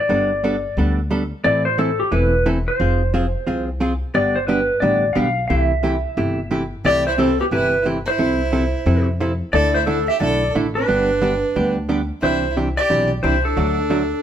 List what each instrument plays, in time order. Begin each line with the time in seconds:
0.00 electric slide guitar D5
0.09 upright bass G1, hollow-body jazz guitar G3 B3 D4 A4
0.44 hollow-body jazz guitar G3 B3 D4 A4
0.77 upright bass D2, hollow-body jazz guitar G3 B3 D4 A4
1.11 hollow-body jazz guitar G3 B3 D4 A4
1.44 upright bass A1, hollow-body jazz guitar E3 A3 C4 E4 A4, electric slide guitar D5
1.65 electric slide guitar C5
1.78 hollow-body jazz guitar E3 A3 C4 E4 A4, electric slide guitar A4
2.00 electric slide guitar G4
2.11 upright bass E1, hollow-body jazz guitar E3 A3 C4 E4 A4, electric slide guitar B4
2.46 hollow-body jazz guitar E3 A3 C4 E4 A4
2.68 electric slide guitar C5
2.80 upright bass F1, hollow-body jazz guitar F3 C4 F4 G#4
3.14 hollow-body jazz guitar F3 C4 F4 G#4
3.47 upright bass C2, hollow-body jazz guitar F3 C4 F4 G#4
3.80 hollow-body jazz guitar F3 C4 F4 G#4
4.14 upright bass G1, hollow-body jazz guitar D3 G3 B3 D4 G4, electric slide guitar D5
4.36 electric slide guitar C5
4.47 hollow-body jazz guitar D3 G3 B3 D4 G4, electric slide guitar B4
4.80 upright bass A1, hollow-body jazz guitar D3 G3 B3 D4 G4, electric slide guitar D5
5.13 upright bass B1, hollow-body jazz guitar D3 G3 B3 D4 G4, electric slide guitar F5
5.48 upright bass C2, hollow-body jazz guitar C3 E3 A3 E4 G4, electric slide guitar E5
5.83 hollow-body jazz guitar C3 E3 A3 E4 G4
6.17 upright bass G1, hollow-body jazz guitar C3 E3 A3 E4 G4
6.51 hollow-body jazz guitar C3 E3 A3 E4 G4
6.84 upright bass C2, hollow-body jazz guitar C3 E3 A3 E4 G4, fiddle G4, electric slide guitar D5
7.07 fiddle E4, electric slide guitar C5
7.17 hollow-body jazz guitar C3 E3 A3 E4 G4, fiddle C4, electric slide guitar A4
7.39 fiddle B3, electric slide guitar G4
7.51 upright bass G1, hollow-body jazz guitar C3 E3 A3 E4 G4, fiddle E4, electric slide guitar B4
7.85 hollow-body jazz guitar C3 E3 A3 E4 G4
8.06 fiddle E4, electric slide guitar C5
8.18 upright bass C2, hollow-body jazz guitar C3 F3 C4 E4 A4
8.52 hollow-body jazz guitar C3 F3 C4 E4 A4
8.86 upright bass F2, hollow-body jazz guitar C3 F3 C4 E4 A4
9.20 hollow-body jazz guitar C3 F3 C4 E4 A4
9.53 upright bass D2, hollow-body jazz guitar D3 A3 D4 E4 A4, fiddle A4, electric slide guitar D5
9.74 fiddle E4, electric slide guitar C5
9.86 hollow-body jazz guitar D3 A3 D4 E4 A4, fiddle D4, electric slide guitar A4
10.08 fiddle G4, electric slide guitar E5
10.20 upright bass B1, hollow-body jazz guitar D3 A3 D4 E4 A4, fiddle A4, electric slide guitar D5
10.54 upright bass A1, hollow-body jazz guitar D3 A3 D4 E4 A4
10.75 fiddle D4, electric slide guitar B4
10.88 upright bass G1, hollow-body jazz guitar D3 G3 B3 D4 G4
11.21 hollow-body jazz guitar D3 G3 B3 D4 G4
11.56 upright bass D2, hollow-body jazz guitar D3 G3 B3 D4 G4
11.89 hollow-body jazz guitar D3 G3 B3 D4 G4
12.21 upright bass C2, hollow-body jazz guitar C3 E3 D4 G4, fiddle E4, electric slide guitar C5
12.57 hollow-body jazz guitar C3 E3 D4 G4
12.77 fiddle G4, electric slide guitar D5
12.90 upright bass B1, hollow-body jazz guitar C3 E3 D4 G4
13.23 upright bass C2, hollow-body jazz guitar C3 E3 D4 G4, fiddle E4, electric slide guitar C5
13.43 fiddle D4, electric slide guitar A4
13.57 upright bass D2, hollow-body jazz guitar D3 F#3 A3 D4 F#4
13.90 hollow-body jazz guitar D3 F#3 A3 D4 F#4